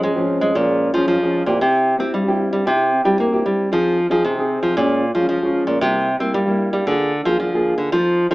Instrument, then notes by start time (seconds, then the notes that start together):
nylon-string guitar
Already playing: F3 C4 C#4
0.02 G#2 G#3
0.16 F3 C4 C#4
0.41 G#3
0.55 A#2 F3 G#3 C#4
0.93 F3 G#3 C#4
1.08 F2 F3
1.22 F3 G#3 C#4
1.46 A#2 C4 E4 G4
1.61 C3
1.98 C4 E4 G4
2.13 G2 G3
2.28 C4 E4 G4
2.53 G3
2.65 C3 C4 E4 G4
3.04 G3 C4 E4 G4
3.18 G2 A#3
3.32 C4 E4 G4
3.46 G3
3.71 F3 C4 D#4 G#4
4.09 F3 C4 D#4 G#4
4.24 C3
4.37 C4 D#4 G#4
4.63 F3
4.77 A#2 G#3 C#4 F4
5.15 F3 G#3 C#4 F4
5.29 F3
5.42 G#3 C#4 F4
5.67 A#2
5.81 C3 G3 A#3 E4
6.19 G3 A#3 C4 E4
6.33 G2 G3
6.46 G3 A#3 E4
6.73 G3
6.86 D3 A#3 F4 G#4
7.24 F3 A#3 F4 G#4
7.40 D3 F3
7.54 A#3 F4 G#4
7.78 D3
7.92 F3 C4 D#4 A4
8.30 F3 C4 D#4 A4